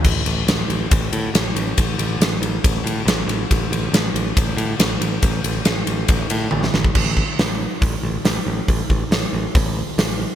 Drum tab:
CC |x---------------|----------------|----------------|----------------|
RD |--x-x-x-x-x-x-x-|x-x-x-x-x-x-x-x-|x-x-x-x-x-x-x-x-|x-x-x-x-x-x-----|
HH |----------------|----------------|----------------|----------------|
SD |----o-------o---|----o-------o---|----o-------o---|----o--------oo-|
T1 |----------------|----------------|----------------|------------o---|
BD |o-------o-------|o-------o-------|o-------o-------|o-------o------o|

CC |x---------------|----------------|
RD |----------------|----------------|
HH |----o---o---o---|o---o---o---o---|
SD |----o-------o---|----o-------o---|
T1 |----------------|----------------|
BD |o-o-----o-------|o-o-----o-------|